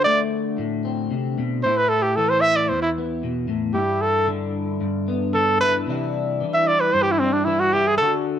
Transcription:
Already playing: clean electric guitar D3 F#4
0.04 clean electric guitar A3, trumpet D5
0.58 clean electric guitar A2
0.85 clean electric guitar C4
1.11 clean electric guitar C3
1.38 clean electric guitar B2
1.63 clean electric guitar A2 E4, trumpet C5
1.77 trumpet B4
1.89 trumpet A4
2.02 trumpet G4
2.16 clean electric guitar E3, trumpet A4
2.29 trumpet C5
2.41 trumpet E5
2.56 trumpet D5
2.68 clean electric guitar E2, trumpet C5
2.82 trumpet E4
2.98 clean electric guitar B3
3.23 clean electric guitar B2
3.48 clean electric guitar A2
3.74 clean electric guitar G2 E4, trumpet G4
4.01 trumpet A4
4.27 clean electric guitar D3
4.81 clean electric guitar G2
5.08 clean electric guitar B3
5.34 clean electric guitar D3, trumpet A4
5.60 clean electric guitar E4, trumpet B4
5.87 clean electric guitar C3 E3 G3 D4 E4
6.41 clean electric guitar E3
6.54 trumpet E5
6.67 trumpet D5
6.80 trumpet B4
6.93 clean electric guitar G2, trumpet C5
7.02 trumpet G4
7.12 trumpet E4
7.19 clean electric guitar G3, trumpet C4
7.33 trumpet D4
7.45 clean electric guitar E3, trumpet E4
7.60 trumpet F#4
7.73 clean electric guitar E4, trumpet G4
7.87 trumpet G#4
7.98 clean electric guitar D3, trumpet A4
8.02 clean electric guitar F#4

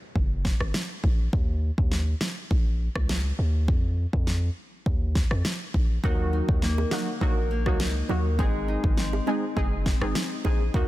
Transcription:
Already playing: downlifter
0.15 808-style bass F#1, kick
0.45 kick, snare
0.60 808-style bass G#1, cross-stick
0.74 snare
1.04 808-style bass A#1, kick
1.33 808-style bass D#2, kick
1.78 808-style bass D#2, kick
1.92 snare
2.21 snare
2.51 808-style bass A#1, kick
2.96 808-style bass C#2, kick, cross-stick
3.09 snare
3.39 808-style bass D#2
3.68 808-style bass F2, kick
4.13 808-style bass F2, kick
4.27 snare
4.86 808-style bass D#2, kick
5.15 kick, snare
5.31 808-style bass F2, cross-stick
5.45 snare
5.74 808-style bass A#1, kick
6.03 808-style bass D#2, nylon-string guitar D#3, synth stab F#3 A#3 D#4 F#4, kick
6.33 nylon-string guitar D#4
6.49 808-style bass D#2, kick
6.62 nylon-string guitar A#3, snare
6.78 high bongo
6.91 synth stab F#3 A#3 D#4 F#4, snare, high bongo
7.21 808-style bass A#1, synth stab F#3 A#3 D#4 F#4, nylon-string guitar A#4, kick
7.51 nylon-string guitar A#3
7.66 808-style bass C#2, synth stab F#3 A#3 D#4 F#4, kick, cross-stick
7.80 nylon-string guitar D#4, snare
8.09 808-style bass D#2, synth stab F#3 A#3 D#4 F#4, nylon-string guitar A#4, high bongo, low bongo
8.38 808-style bass G#1, synth stab G#3 C4 D#4 G#4, nylon-string guitar G#3, kick
8.68 nylon-string guitar D#4
8.84 808-style bass G#1, kick
8.97 nylon-string guitar C4, snare
9.13 high bongo
9.27 synth stab G#3 C4 D#4 G#4, nylon-string guitar D#4, high bongo
9.56 808-style bass F#1, synth stab G#3 C4 D#4 G#4, nylon-string guitar G#4, kick
9.86 nylon-string guitar C4, kick, snare
10.01 808-style bass G#1, synth stab G#3 C4 D#4 G#4, cross-stick
10.15 nylon-string guitar D#4, snare
10.45 808-style bass A#1, synth stab G#3 C4 D#4 G#4, nylon-string guitar G#4, kick, high bongo, low bongo
10.74 808-style bass D#2, nylon-string guitar D#3, synth stab F#3 A#3 D#4 F#4, kick

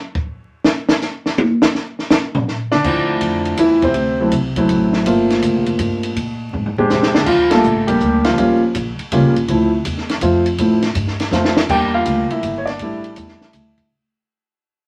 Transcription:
0.15 kick
0.65 snare
0.89 snare
1.02 snare, hi-hat pedal
1.26 snare
1.38 high tom
1.62 snare
1.75 snare
1.99 snare
2.10 snare, hi-hat pedal
2.35 floor tom
2.48 snare
2.71 grand piano D3 D4, snare
2.84 upright bass D2, grand piano F3 A3 C4 E4, kick, crash
3.21 upright bass F2, kick, hi-hat pedal, ride
3.45 ride
3.57 upright bass E2, grand piano E3 E4, kick, hi-hat pedal, ride
3.82 grand piano C3 C4, kick, ride
3.94 upright bass D2, kick, ride
4.21 grand piano F#3 A3 C4 E4
4.32 upright bass C2, kick, hi-hat pedal, ride
4.56 grand piano F#3 A3 C4 E4, kick, ride
4.69 upright bass A1, kick, ride
4.93 snare
5.06 upright bass G1, grand piano A3 A#3 C4 F4, kick, ride
5.30 snare, ride
5.42 upright bass D2, kick, hi-hat pedal, ride
5.55 upright bass A#1
5.66 upright bass G1, ride
5.79 upright bass G2, kick, hi-hat pedal, ride
6.03 ride
6.16 upright bass A#2, kick, ride
6.53 upright bass G#2, floor tom
6.66 floor tom
6.78 grand piano G#3 C4 D4 G4, muted upright bass stroke, floor tom
6.90 upright bass F2, grand piano C3 C4, snare, hi-hat pedal
7.03 snare
7.14 grand piano D3 D4, snare
7.26 upright bass D#2, grand piano F3 F4, kick, crash
7.50 grand piano G3 A3 A#3 D4 F4 A4, snare, ride
7.63 upright bass A#1, hi-hat pedal
7.76 upright bass G1
7.87 upright bass D#1, grand piano G3 A#3 D4 G4, ride
8.00 upright bass D2, kick, hi-hat pedal
8.24 grand piano F3 F4, snare, ride
8.37 upright bass D#2, grand piano G3 A#3 C#4 F4, kick, ride
8.75 upright bass A#1, kick, hi-hat pedal, ride
8.99 muted upright bass stroke, ride
9.12 upright bass C#2, grand piano G3 A#3 C#4 F4, kick, ride
9.23 upright bass A#1
9.35 upright bass G1, ride
9.48 upright bass D2, grand piano F3 A3 C4 E4, kick, ride
9.85 upright bass E2, kick, hi-hat pedal, ride
9.98 snare
10.09 snare, ride
10.21 upright bass F2, grand piano F3 A3 C4 F4, kick, hi-hat pedal, ride
10.46 ride
10.58 upright bass A2, grand piano F3 A3 C4 E4, kick, ride
10.82 snare, ride
10.95 upright bass G2, kick, hi-hat pedal, ride
11.07 snare
11.20 snare, ride
11.31 upright bass F2, grand piano F3 A3 C4 F4, snare, hi-hat pedal
11.45 snare
11.57 snare
11.69 upright bass E2, grand piano G3 A#3 D4 G4 G5, kick, crash
11.94 grand piano F4 F5
12.05 upright bass D2, kick, hi-hat pedal, ride
12.30 grand piano E4 E5, muted upright bass stroke, ride
12.43 upright bass G1, kick, hi-hat pedal, ride
12.58 grand piano C#5
12.66 grand piano D4 D5, snare, ride
12.79 upright bass A1, grand piano G3 A3 D4 E4, kick, ride
13.04 ride
13.16 upright bass E2, kick, hi-hat pedal, ride
13.28 snare
13.41 muted upright bass stroke, snare
13.53 upright bass D2, kick, hi-hat pedal, ride
13.78 kick, ride

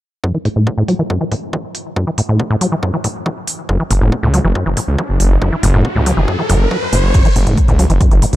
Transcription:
0.24 acid bass F#2, kick
0.34 acid bass E3
0.45 acid bass A2, open hi-hat
0.56 acid bass A2
0.67 acid bass C#3, kick
0.78 acid bass A2
0.88 acid bass F#3, open hi-hat
0.99 acid bass E3
1.10 acid bass F#2, kick
1.21 acid bass E3
1.32 acid bass A2, kick, open hi-hat
1.53 acid bass E3, kick
1.75 open hi-hat
1.96 acid bass F#2, kick
2.07 acid bass E3
2.18 acid bass A2, open hi-hat
2.29 acid bass A2
2.40 acid bass C#3, kick
2.50 acid bass A2
2.61 acid bass F#3, open hi-hat
2.72 acid bass E3
2.83 acid bass F#2, kick
2.94 acid bass E3
3.04 acid bass A2, kick, open hi-hat
3.26 acid bass E3, kick
3.47 open hi-hat
3.69 detuned saw bass F#1, acid bass F#2, kick, riser
3.80 acid bass E3
3.90 detuned saw bass F#1, acid bass A2, open hi-hat
4.01 detuned saw bass F#1, acid bass A2
4.12 acid bass C#3, kick
4.23 detuned saw bass C#2, acid bass A2
4.34 acid bass F#3, open hi-hat
4.44 detuned saw bass F#1, acid bass E3
4.55 acid bass F#2, kick
4.66 detuned saw bass F#1, acid bass E3
4.77 acid bass A2, kick, open hi-hat
4.88 detuned saw bass C#2
4.98 acid bass E3, kick
5.09 detuned saw bass F#1
5.20 detuned saw bass F#1, open hi-hat
5.42 detuned saw bass F#1, acid bass F#2, kick
5.52 acid bass E3
5.63 detuned saw bass F#1, acid bass A2, open hi-hat
5.74 detuned saw bass F#1, acid bass A2
5.85 acid bass C#3, kick
5.96 detuned saw bass C#2, acid bass A2
6.06 acid bass F#3, open hi-hat
6.17 detuned saw bass F#1, acid bass E3
6.28 acid bass F#2, kick
6.39 acid bass E3
6.50 detuned saw bass F#1, acid bass F#2, kick, open hi-hat
6.71 acid bass F#3, kick
6.93 detuned saw bass F#1, acid bass A2, open hi-hat
7.03 detuned saw bass F#1
7.14 detuned saw bass F#1, acid bass F#2, kick, closed hi-hat, crash
7.25 acid bass E3, closed hi-hat
7.36 detuned saw bass F#1, acid bass A2, open hi-hat
7.47 detuned saw bass F#1, acid bass A2, closed hi-hat
7.57 acid bass C#3, kick, closed hi-hat
7.68 detuned saw bass C#2, acid bass A2, closed hi-hat
7.79 acid bass F#3, open hi-hat
7.90 detuned saw bass F#1, acid bass E3, closed hi-hat
8.01 acid bass F#2, kick, closed hi-hat
8.11 detuned saw bass F#1, acid bass E3, closed hi-hat
8.22 acid bass A2, open hi-hat
8.33 detuned saw bass C#2, closed hi-hat

